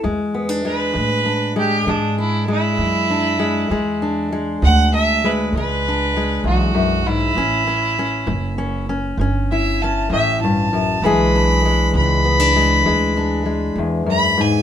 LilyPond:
<<
  \new Staff \with { instrumentName = "Fiddle" } { \time 12/8 \key e \mixolydian \tempo 4. = 66 r4 b'4. g'8 d'8 e'8 e'2~ | e'4 r8 fis''8 e''8 b'8 b'4. fis'4 e'8~ | e'2~ e'8 r4 e''8 a''8 e''8 a''4 | b''4. b''2. r8 b''8 gis''8 | }
  \new Staff \with { instrumentName = "Steel-string acoustic guitar" } { \clef bass \time 12/8 \key e \mixolydian << { gis8 b16 d'16 gis4 d'8 gis8 gis8 d'8 gis4 d'8 gis8 | gis8 d'8 gis4 d'8 gis8 gis8 d'8 gis2 | cis'8 cis'8 cis'4 cis'8 cis'8 cis'8 e'8 cis'2 | <e gis d' gis'>8 d'8 gis4 b16 d'16 gis8 gis8 d'8 gis2 | } \\ { e,4 r8 e,4 r8 e,4 r8 e,4 r8 | e,4 r8 e,4 r8 e,4 r8 e,8 fis,8 gis,8 | a,4 r8 a,4 r8 a,4 r8 a,8 g,8 fis,8 | e,4 r8 e,4 r8 e,4 r8 e,8 fis,8 gis,8 | } >> }
  \new Staff \with { instrumentName = "Upright bass" } { \clef bass \time 12/8 \key e \mixolydian e,4. a,4. gis,4. fis,4. | e,4. d,4. cis,4. b,,4. | a,,4. fis,,4. g,,4. a,,4. | b,,4. cis,4. d,4. e,4. | }
>>